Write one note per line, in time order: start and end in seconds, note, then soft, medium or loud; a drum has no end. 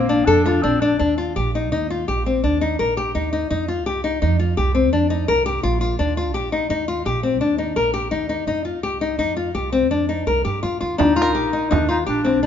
0.00 0.23 A#1 medium
0.00 0.27 A#3 medium
0.09 0.23 D4 medium
0.26 0.59 F2 medium
0.26 0.64 D4 medium
0.26 0.41 A4 medium
0.46 0.60 F4 medium
0.46 frame drum soft
0.62 0.96 A#1 medium
0.62 0.82 C4 medium
0.62 0.78 D4 medium
0.80 0.99 D4 medium
0.80 0.96 D4 medium
0.99 1.38 D#2 medium
0.99 1.14 D4 medium
1.18 1.32 F4 medium
1.36 1.73 A#1 medium
1.36 1.50 G4 medium
1.55 1.69 D#4 medium
1.72 2.04 D#2 medium
1.72 1.86 D#4 medium
1.90 2.04 F4 medium
2.08 2.45 A#1 medium
2.08 2.22 G4 medium
2.26 2.40 C4 medium
2.44 2.75 D#2 medium
2.44 2.58 D4 medium
2.61 2.75 D#4 medium
2.79 3.11 A#1 medium
2.79 2.93 A#4 medium
2.97 3.11 G4 medium
3.15 3.46 D#2 medium
3.15 3.29 D#4 medium
3.33 3.47 D#4 medium
3.51 3.86 F2 medium
3.51 3.64 D#4 medium
3.68 3.82 F4 medium
3.86 4.24 C2 medium
3.86 4.00 G4 medium
4.04 4.18 D#4 medium
4.22 4.53 F2 medium
4.22 4.36 D#4 medium
4.39 4.53 F4 medium
4.57 4.93 C2 medium
4.57 4.71 G4 medium
4.75 4.89 C4 medium
4.93 5.24 F2 medium
4.93 5.07 D4 medium
5.10 5.24 D#4 medium
5.28 5.60 C2 medium
5.28 5.42 A#4 medium
5.46 5.60 G4 medium
5.63 5.95 A#1 medium
5.63 5.77 F4 medium
5.81 5.95 F4 medium
5.99 6.34 D#2 medium
5.99 6.13 D4 medium
6.17 6.31 F4 medium
6.34 6.71 A#1 medium
6.34 6.48 G4 medium
6.52 6.66 D#4 medium
6.70 7.01 D#2 medium
6.70 6.84 D#4 medium
6.88 7.02 F4 medium
7.05 7.41 A#1 medium
7.05 7.20 G4 medium
7.23 7.37 C4 medium
7.41 7.72 D#2 medium
7.41 7.55 D4 medium
7.58 7.72 D#4 medium
7.76 8.07 A#1 medium
7.76 7.90 A#4 medium
7.94 8.07 G4 medium
8.11 8.43 D#2 medium
8.11 8.25 D#4 medium
8.29 8.43 D#4 medium
8.47 8.83 F2 medium
8.47 8.61 D#4 medium
8.65 8.79 F4 medium
8.83 9.20 C2 medium
8.83 8.97 G4 medium
9.01 9.15 D#4 medium
9.18 9.50 F2 medium
9.18 9.33 D#4 medium
9.37 9.50 F4 medium
9.55 9.90 C2 medium
9.55 9.68 G4 medium
9.72 9.86 C4 medium
9.90 10.22 F2 medium
9.90 10.05 D4 medium
10.09 10.23 D#4 medium
10.27 10.43 C2 medium
10.27 10.41 A#4 medium
10.45 10.61 G2 medium
10.45 10.59 G4 medium
10.63 10.80 F2 medium
10.63 10.77 F4 medium
10.81 10.98 D#2 medium
10.81 10.95 F4 medium
10.97 11.36 D#2 medium
10.97 11.13 D4 medium
10.97 11.72 D#4 medium
10.97 frame drum medium
11.16 11.31 F4 medium
11.22 12.18 A#4 medium
11.35 11.73 A#1 medium
11.35 11.49 G4 medium
11.53 11.67 D#4 medium
11.71 12.03 D#2 medium
11.71 11.89 D4 medium
11.71 11.85 D#4 medium
11.71 frame drum medium
11.89 11.98 D#4 medium
11.89 12.03 F4 medium
12.06 12.44 A#1 medium
12.06 12.45 D4 medium
12.06 12.21 G4 medium
12.24 12.39 C4 medium
12.24 frame drum soft
12.43 12.46 D4 medium